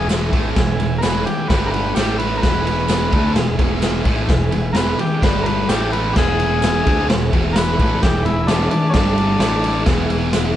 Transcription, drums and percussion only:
0.09 snare, ride, tambourine
0.33 kick, ride
0.56 kick, snare, ride
0.80 ride
1.03 snare, ride, tambourine
1.27 ride
1.50 kick, snare, ride
1.74 ride
1.96 snare, ride, tambourine
2.20 ride
2.43 kick, snare, ride
2.67 ride
2.88 snare, ride, tambourine
3.13 kick, ride
3.36 snare, ride
3.59 kick, ride
3.82 snare, ride, tambourine
4.05 kick, ride
4.29 kick, snare, ride
4.52 ride
4.75 snare, ride, tambourine
4.99 ride
5.22 kick, snare, ride
5.46 ride
5.69 snare, ride, tambourine
5.93 ride
6.16 kick, snare, crash
6.40 ride
6.62 snare, ride, tambourine
6.87 kick, ride
7.10 snare, ride
7.33 kick, ride
7.56 snare, ride, tambourine
7.79 kick, ride
8.03 kick, snare, ride
8.26 ride
8.48 snare, ride, tambourine
8.71 ride
8.94 kick, snare, ride
9.18 ride
9.40 snare, ride, tambourine
9.64 ride
9.86 kick, snare, ride
10.10 ride
10.33 snare, ride, tambourine

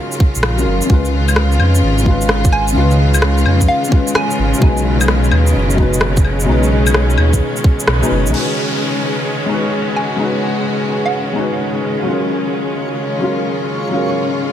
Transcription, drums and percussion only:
0.12 shaker
0.20 kick
0.35 shaker
0.43 cross-stick
0.58 shaker
0.82 shaker
0.90 kick
1.05 shaker
1.28 claves, shaker
1.36 cross-stick
1.52 shaker
1.60 claves
1.75 shaker
1.98 shaker
2.06 kick
2.21 shaker
2.29 cross-stick
2.44 kick, shaker
2.52 claves
2.68 shaker
2.91 shaker
3.14 claves, shaker
3.22 cross-stick
3.38 shaker
3.46 claves
3.61 kick, shaker
3.84 shaker
3.92 kick
4.08 shaker
4.15 cross-stick
4.31 shaker
4.54 shaker
4.62 kick
4.77 shaker
5.01 claves, shaker
5.08 cross-stick
5.24 shaker
5.32 claves
5.47 shaker
5.70 shaker
5.78 kick
5.93 shaker
6.01 cross-stick
6.17 kick, shaker
6.25 claves
6.40 shaker
6.63 shaker
6.87 claves, shaker
6.94 cross-stick
7.10 shaker
7.18 claves
7.33 kick, shaker
7.56 shaker
7.64 kick
7.80 shaker
7.88 cross-stick
8.03 shaker
8.26 shaker
8.34 crash

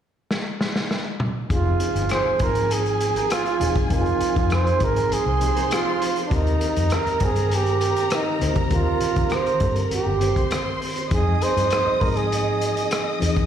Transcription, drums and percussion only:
0.31 snare
0.61 snare
0.76 snare
0.91 snare
1.20 mid tom
1.50 kick, closed hi-hat
1.80 closed hi-hat
1.96 closed hi-hat
2.09 cross-stick, closed hi-hat
2.39 kick, closed hi-hat
2.55 closed hi-hat
2.71 closed hi-hat
2.86 closed hi-hat
3.01 closed hi-hat
3.16 closed hi-hat
3.30 cross-stick, closed hi-hat
3.46 closed hi-hat
3.61 closed hi-hat
3.75 kick, closed hi-hat
3.90 kick, closed hi-hat
4.06 closed hi-hat
4.21 closed hi-hat
4.36 kick, closed hi-hat
4.50 cross-stick, closed hi-hat
4.67 closed hi-hat
4.80 kick, closed hi-hat
4.96 closed hi-hat
5.12 closed hi-hat
5.41 closed hi-hat
5.57 closed hi-hat
5.71 cross-stick, closed hi-hat
6.02 closed hi-hat
6.16 closed hi-hat
6.31 kick, closed hi-hat
6.47 closed hi-hat
6.61 closed hi-hat
6.76 closed hi-hat
6.90 cross-stick, closed hi-hat
7.07 closed hi-hat
7.20 kick, closed hi-hat
7.36 closed hi-hat
7.51 closed hi-hat
7.66 closed hi-hat
7.81 closed hi-hat
7.96 closed hi-hat
8.10 cross-stick, closed hi-hat
8.41 closed hi-hat
8.55 kick, closed hi-hat
8.71 kick, closed hi-hat
9.00 closed hi-hat
9.16 kick, closed hi-hat
9.30 cross-stick, closed hi-hat
9.46 closed hi-hat
9.60 kick, closed hi-hat
9.76 closed hi-hat
9.91 closed hi-hat
10.21 closed hi-hat
10.36 kick, closed hi-hat
10.51 cross-stick, closed hi-hat
10.82 open hi-hat
10.96 closed hi-hat
11.11 kick, closed hi-hat
11.42 closed hi-hat
11.57 closed hi-hat
11.70 cross-stick, closed hi-hat
12.01 kick, open hi-hat
12.17 closed hi-hat
12.32 closed hi-hat
12.61 closed hi-hat
12.77 closed hi-hat
12.91 cross-stick, closed hi-hat
13.22 closed hi-hat
13.36 kick, closed hi-hat

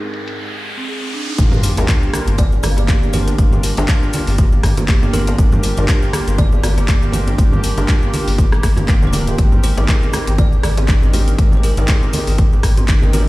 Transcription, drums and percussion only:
0.14 closed hi-hat
0.28 closed hi-hat
1.38 kick, closed hi-hat, cabasa
1.52 djembe tone, low conga, cabasa
1.63 open hi-hat, cabasa
1.77 closed hi-hat, muted conga, djembe slap, djembe tone, high conga, cabasa
1.88 kick, clap, closed hi-hat, cabasa
2.03 djembe tone, cabasa
2.13 cross-stick, open hi-hat, muted conga, high conga, cabasa
2.27 closed hi-hat, djembe tone, cabasa
2.38 kick, closed hi-hat, high conga, cabasa
2.52 muted conga, djembe tone, cabasa
2.63 cross-stick, open hi-hat, low conga, cabasa
2.77 closed hi-hat, djembe slap, djembe tone, high conga, cabasa
2.88 kick, clap, closed hi-hat, muted conga, cabasa
3.03 djembe tone, cabasa
3.13 open hi-hat, low conga, cabasa
3.28 closed hi-hat, muted conga, djembe tone, cabasa
3.38 kick, closed hi-hat, cabasa
3.52 djembe tone, low conga, cabasa
3.63 open hi-hat, cabasa
3.77 closed hi-hat, muted conga, djembe slap, high conga, djembe tone, cabasa
3.88 kick, clap, closed hi-hat, cabasa
4.03 djembe tone, cabasa
4.13 open hi-hat, high conga, cabasa
4.27 open hi-hat, djembe tone, cabasa
4.38 kick, closed hi-hat, cabasa
4.52 muted conga, djembe tone, cabasa
4.63 kick, cross-stick, open hi-hat, djembe slap, cabasa
4.77 closed hi-hat, djembe tone, low conga, cabasa
4.88 kick, clap, closed hi-hat, muted conga, cabasa
5.03 high conga, djembe tone, cabasa
5.13 open hi-hat, high conga, low conga, cabasa
5.27 closed hi-hat, djembe slap, muted conga, djembe tone, cabasa
5.38 kick, closed hi-hat, cabasa
5.52 djembe tone, low conga, cabasa
5.63 open hi-hat, cabasa
5.77 closed hi-hat, muted conga, djembe slap, high conga, djembe tone, cabasa
5.88 kick, clap, closed hi-hat, cabasa
6.02 djembe tone, cabasa
6.13 cross-stick, open hi-hat, muted conga, high conga, cabasa
6.28 closed hi-hat, djembe tone, cabasa
6.38 kick, closed hi-hat, high conga, cabasa
6.52 muted conga, djembe tone, cabasa
6.64 cross-stick, open hi-hat, low conga, cabasa
6.78 closed hi-hat, djembe slap, djembe tone, high conga, cabasa
6.88 kick, clap, closed hi-hat, muted conga, cabasa
7.03 djembe tone, cabasa
7.12 open hi-hat, low conga, cabasa
7.27 closed hi-hat, muted conga, djembe tone, cabasa
7.38 kick, closed hi-hat, cabasa
7.52 djembe tone, low conga, cabasa
7.63 open hi-hat, cabasa
7.77 closed hi-hat, muted conga, djembe slap, djembe tone, high conga, cabasa
7.88 kick, clap, closed hi-hat, cabasa
8.02 djembe tone, cabasa
8.13 open hi-hat, high conga, cabasa
8.28 open hi-hat, djembe tone, cabasa
8.38 kick, closed hi-hat, cabasa
8.52 cross-stick, muted conga, djembe tone, cabasa
8.63 kick, cross-stick, open hi-hat, djembe slap, cabasa
8.77 closed hi-hat, djembe tone, low conga, cabasa
8.88 kick, clap, closed hi-hat, cabasa
9.02 high conga, djembe tone, cabasa
9.13 open hi-hat, high conga, low conga, cabasa
9.27 closed hi-hat, djembe slap, muted conga, djembe tone, cabasa
9.38 kick, closed hi-hat, cabasa
9.52 djembe tone, low conga, cabasa
9.63 open hi-hat, cabasa
9.77 closed hi-hat, djembe slap, muted conga, djembe tone, high conga, cabasa
9.88 kick, clap, closed hi-hat, cabasa
10.03 djembe tone, cabasa
10.13 cross-stick, open hi-hat, muted conga, high conga, cabasa
10.27 closed hi-hat, djembe tone, cabasa
10.38 kick, closed hi-hat, high conga, cabasa
10.52 muted conga, djembe tone, cabasa
10.63 cross-stick, open hi-hat, low conga, cabasa
10.77 closed hi-hat, djembe slap, high conga, djembe tone, cabasa
10.88 kick, clap, closed hi-hat, muted conga, cabasa
11.02 djembe tone, cabasa
11.13 open hi-hat, low conga, cabasa
11.28 closed hi-hat, muted conga, djembe tone, cabasa
11.38 kick, closed hi-hat, cabasa
11.52 djembe tone, low conga, cabasa
11.63 open hi-hat, cabasa
11.77 closed hi-hat, djembe slap, muted conga, high conga, djembe tone, cabasa
11.88 kick, clap, closed hi-hat, cabasa
12.02 djembe tone, cabasa
12.13 open hi-hat, high conga, cabasa
12.27 open hi-hat, djembe tone, cabasa
12.38 kick, closed hi-hat, cabasa
12.53 muted conga, djembe tone, cabasa
12.63 kick, cross-stick, open hi-hat, djembe slap, cabasa
12.77 closed hi-hat, djembe tone, low conga, cabasa
12.88 kick, clap, closed hi-hat, muted conga, cabasa
13.02 djembe tone, high conga, cabasa
13.13 open hi-hat, high conga, low conga, cabasa

